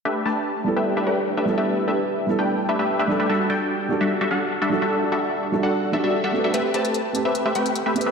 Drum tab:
HH |--------------------------------|--------------------------------|--------------------------------|--------------------------------|

HH |x---x-x-x---x---x---x-x-x---xx--|